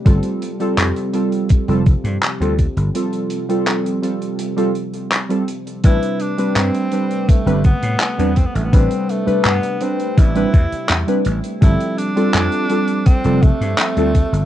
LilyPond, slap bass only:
\new Staff \with { instrumentName = "Slap bass" } { \clef bass \time 4/4 \key g \mixolydian \tempo 4 = 83 g,,16 r8. f,16 r4 f,,16 r16 g,16 r16 d,16 r16 g,,16 | r1 | a,,16 r8. g,16 r4 g,,16 r16 a,16 r16 e,16 r16 a,,16 | a,,16 r8. g,16 r8. a,,16 r16 e,16 r16 e,16 r16 a,,16 r16 |
g,,16 r8. f,16 r4 f,,16 r16 g,16 r16 d,16 r16 g,,16 | }